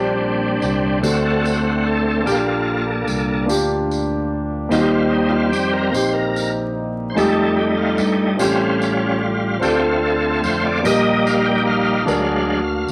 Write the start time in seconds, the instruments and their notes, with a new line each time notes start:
Already playing: fingered electric bass A#1, grand piano A#2 A#3 C4 D4 G4, tonewheel organ G3 C4 D4, french horn section G3 A#3 C4 D4
0.62 fingered electric bass C2, tambourine
1.00 fingered electric bass D2, grand piano D3 A3 C4 D4 F#4, french horn section F#3 A3, tonewheel organ A3 C4 F#4, tambourine
1.25 tonewheel organ A4
1.45 tonewheel organ F#4, tambourine
1.66 tonewheel organ F#4
1.86 tonewheel organ A4
2.07 tonewheel organ A4
2.23 fingered electric bass A#1, grand piano A#2 A#3 D4 F4 G4, french horn section F3 G3 A#3, tonewheel organ A#3 F4 G4 A4, tambourine
2.46 tonewheel organ F4
3.08 fingered electric bass C2, tambourine
3.46 fingered electric bass D2, grand piano A#3 D4 F4 G4, tambourine
3.91 tambourine
4.69 fingered electric bass D#2, grand piano D#3 A#3 C4 D#4 F#4, tonewheel organ G3 C4 D#4 F4, french horn section G3 C4 D#4, tambourine
4.79 grand piano G4
4.91 tonewheel organ F4
5.06 tonewheel organ D#4 F4
5.29 tonewheel organ F4
5.51 fingered electric bass F2, tonewheel organ G4, tambourine
5.72 tonewheel organ A#4
5.92 fingered electric bass A#1, grand piano A#3 C4 D#4 G4, tonewheel organ C5, tambourine
6.13 tonewheel organ A#4
6.36 tambourine
7.10 tonewheel organ C5
7.14 fingered electric bass F2, tonewheel organ G3 A3 D#4 A4, grand piano G#3 D#4 F4 G4, french horn section A3 F4, tambourine
7.21 grand piano A3
7.57 tonewheel organ G4
7.77 tonewheel organ F4
7.98 fingered electric bass G2, tonewheel organ D#4, tambourine
8.37 fingered electric bass A1, grand piano A2 A3 C#4 F4 G4, french horn section C#3 G3, tonewheel organ G3 C4 C#4 F4, tambourine
8.80 tonewheel organ C#4, tambourine
9.21 tonewheel organ F4
9.59 fingered electric bass D2, grand piano D3 C4 D4 F4 A4, tonewheel organ A3 C4 F4 G4, french horn section C4 D4, tambourine
10.03 tonewheel organ A4
10.44 fingered electric bass F2, tonewheel organ C5, tambourine
10.65 tonewheel organ D5
10.82 fingered electric bass A#1, grand piano A#2 A#3 D#4 G4 A#4, tonewheel organ G3 A#3 D#4 D#5, french horn section G3 A#3 D#4 G4, tambourine
11.26 tonewheel organ F5, tambourine
11.45 tonewheel organ G5
11.66 tonewheel organ F5
12.05 fingered electric bass D2, grand piano D3 D4 F#4 G#4 A#4, tonewheel organ F#3 G#3 D4, french horn section D4 F#4, tambourine
12.88 tambourine